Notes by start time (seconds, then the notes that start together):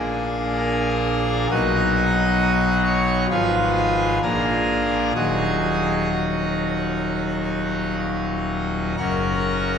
Already playing: A#1 A#2 A#3 D4 G#4
0.59 A#4
1.51 B1 B2 F#3 D#4 F#4 D#5
2.86 C#5
3.30 G#1 G#2 F3 F4 G#4 B4
4.22 A#1 A#2 F3 D4 G#4 A#4
5.15 D#1 D#2 F#3 D#4 F#4 G#4
6.12 F#4
8.97 F#1 F#2 C#4 F#4 A#4